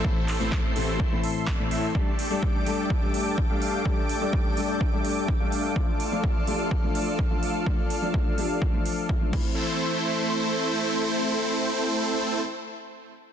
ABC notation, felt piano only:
X:1
M:4/4
L:1/16
Q:1/4=126
K:Am
V:1 name="Felt piano"
[A,,E,A,CE] z2 [A,,E,A,CE]3 [A,,E,A,CG]2 z [A,,E,A,CE]3 z [A,,E,A,CE]3 | [G,,G,A,DG] z2 [G,,G,A,DG]3 [G,,G,A,DA]2 z [G,,G,A,DG]3 z [G,,G,A,DG]3 | [G,,G,A,DG] z2 [G,,G,A,DG]3 [G,,G,A,DA]2 z [G,,G,A,DG]3 z [G,,G,A,DG]3 | [F,A,DF] z2 [F,A,DF]3 [F,A,DG]2 z [F,A,DF]3 z [F,A,DF]3 |
[F,A,DF] z2 [F,A,DF]3 [F,A,DG]2 z [F,A,DF]3 z [F,A,DF] [E,A,CE]2- | [E,A,CE]16- | [E,A,CE]16 |]